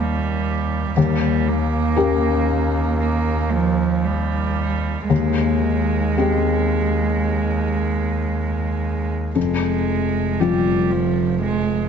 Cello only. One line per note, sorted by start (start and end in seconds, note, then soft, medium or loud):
0.00 0.97 G3 medium
0.99 1.49 G3 medium
1.48 2.99 A#3 medium
3.00 3.53 A#3 soft
3.51 4.06 F3 medium
4.05 5.09 G3 medium
5.10 9.11 G#3 medium
9.36 10.41 G#3 soft
10.40 10.92 G3 medium
10.91 11.41 F3 soft
11.41 11.89 G#3 medium